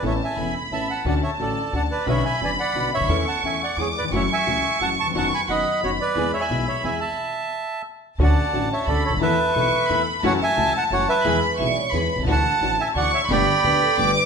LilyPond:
<<
  \new Staff \with { instrumentName = "Violin section" } { \time 3/4 \key a \major \tempo 4 = 177 a''4 b''2 | a''2. | b''2. | cis'''2 d'''4 |
cis'''2. | cis'''4 b''2 | b''2. | r2. |
a''2 b''4 | a''4 cis'''4 b''4 | a''2. | b''4 cis'''4 b''4 |
a''2 cis'''4 | b''2 d'''4 | }
  \new Staff \with { instrumentName = "Bandoneon" } { \time 3/4 \key a \major << { e''8 gis''4 r8 a''8 a''8 | fis''8 e''8 d''4 fis''8 d''8 | e''8 gis''8 gis''8 fis''4 e''8~ | e''8 a''8 gis''8 fis''8 cis''8 d''8 |
e''8 gis''4. a''8 cis'''8 | a''16. cis'''32 b''8 fis''4 cis''8 d''8~ | d''8 e''16 gis''8. e''8 gis''8 a''8~ | a''2 r4 |
fis''4. e''8 d''8 cis''8 | e''2~ e''8 r8 | fis''8 gis''4 a''8 fis''8 e''8~ | e''8 r2 r8 |
a''4. gis''8 fis''8 e''8 | g''2~ g''8 r8 | } \\ { cis''8 e''4 r8 e''8 fis''8 | d''8 cis''8 a'4 d''8 b'8 | cis''8 e''8 d''8 d''4 cis''8~ | cis''8 fis''8 e''8 d''8 gis'8 b'8 |
cis''8 e''4. fis''8 a''8 | fis''8 gis''8 dis''4 fis'8 b'8~ | b'8 cis''16 e''8. cis''8 e''8 e''8~ | e''2 r4 |
d''4. cis''8 a'8 a'8 | b'2~ b'8 r8 | cis''8 e''4 fis''8 cis''8 b'8~ | b'8 r2 r8 |
fis''4. e''8 d''8 cis''8 | d''2~ d''8 r8 | } >> }
  \new Staff \with { instrumentName = "Vibraphone" } { \time 3/4 \key a \major r2. | r2. | r2. | r2. |
r2. | r2. | r2. | r2. |
r2. | r2. | r2. | r8 b'8 e''16 d''16 cis''8 b'8. r16 |
r2. | r4 b'8 a'8 b'8. r16 | }
  \new Staff \with { instrumentName = "String section" } { \time 3/4 \key a \major <b cis' a'>8 r8 <b cis' a'>8 r8 <b cis' a'>8 r8 | <cis' d' fis'>8 r8 <cis' d' fis'>8 r8 <cis' d' fis'>8 r8 | <cis' d' b'>8 r8 <cis' d' b'>8 r8 <cis' d' b'>8 r8 | <cis' e' a'>8 r8 <cis' e' a'>8 r8 <b e' gis'>8 r8 |
<a e' fis'>8 r8 <a e' fis'>8 r8 <a e' fis'>8 r8 | <b dis' fis'>8 r8 <b dis' fis'>8 r8 <b dis' fis'>8 r8 | <b e' gis'>8 r8 <b e' gis'>8 r8 <b e' gis'>8 r8 | r2. |
<cis' d' fis'>8 r8 <cis' d' fis'>8 r8 <cis' d' fis'>8 r8 | <b e' a'>8 r8 <b e' a'>8 r8 <b e' a'>8 r8 | <a e' fis'>8 r8 <a e' fis'>8 r8 <a e' fis'>8 r8 | <b e' gis'>8 r8 <b e' gis'>8 r8 <b e' gis'>8 r8 |
<d' e' fis'>8 r8 <d' e' fis'>8 r8 <d' e' fis'>8 r8 | <a b g'>8 r8 <a b g'>8 r8 <a b g'>8 r8 | }
  \new Staff \with { instrumentName = "Grand piano" } { \clef bass \time 3/4 \key a \major <a,, a, cis a b e'>8 r8 <e,, e, cis a b e'>8 r8 <a,, a, cis a b e'>8 r8 | <d, d a cis' fis'>8 r8 <a,, a, d a cis' fis'>8 r8 <d, d a cis' fis'>8 r8 | <b,, b, d b cis' fis'>8 r8 <fis,, fis, d b cis' fis'>8 r8 <b,, b, d b cis' fis'>8 r32 cis,32 d,32 dis,32 | <e, e a cis' a'>8 r8 <e, e a cis' a'>8 r8 <e, e gis b gis'>8 r32 dis,32 e,32 f,32 |
<fis, e fis a cis' fis'>8 r8 <cis, cis e a cis' fis'>8 r8 <fis, e fis a cis' fis'>8 r32 dis,32 e,32 f,32 | <fis, dis fis b fis'>8 r8 <fis, dis fis b fis'>8 r8 <fis, dis fis b fis'>8 r8 | <e, e gis b gis'>8 r8 <b,, b, e gis b gis'>8 r8 <e, e gis b gis'>8 r8 | r2. |
<d, d a cis' fis'>8 r8 <a,, a, d a cis' fis'>8 r8 <d, d a cis' fis'>8 r32 cis,32 d,32 dis,32 | <e, e a b a'>8 r8 <b,, b, e a b a'>8 r8 <e, e a b a'>8 r8 | <fis, e fis a cis' fis'>8 r8 <cis, cis e a cis' fis'>8 r8 <fis, e fis a cis' fis'>8 r8 | <e, e gis b gis'>8 r8 <b,, b, e gis b gis'>8 r8 <e, e gis b gis'>8 r32 b,,32 c,32 cis,32 |
<d, d e a d' fis'>8 r8 <a,, a, e a d' fis'>8 r8 <d, d e a d' fis'>8 r8 | <g,, g, d a b g'>8 r8 <d, d a b g'>8 r8 <g,, g, d a b g'>8 r8 | }
  \new Staff \with { instrumentName = "Upright bass" } { \clef bass \time 3/4 \key a \major a,,16. r8 r32 e,,16. r8 r32 a,,16. r8 r32 | d,16. r8 r32 a,,16. r8 r32 d,16. r8 r32 | b,,16. r8 r32 fis,,16. r8 r32 b,,16. r16 cis,32 d,32 dis,32 | e,16. r8 r32 e,16. r8 r32 e,16. r8 r32 |
fis,,16. r8 r32 cis,16. r8 r32 fis,,16. r8 r32 | fis,,16. r8 r32 fis,,16. r8 r32 fis,,16. r8 r32 | e,16. r8 r32 b,,16. r8 r32 e,16. r8 r32 | r2. |
d,16. r8 r32 a,,16. r8 r32 d,16. r16 cis,32 d,32 dis,32 | e,16. r8 r32 b,,16. r8 r32 e,16. r8 r32 | fis,,16. r8 r32 cis,16. r8 r32 fis,,16. r8 r32 | e,16. r8 r32 b,,16. r8 r32 e,16. r16 b,,32 c,32 cis,32 |
d,16. r8 r32 a,,16. r8 r32 d,16. r8 r32 | g,,16. r8 r32 d,16. r8 r32 g,,16. r8 r32 | }
>>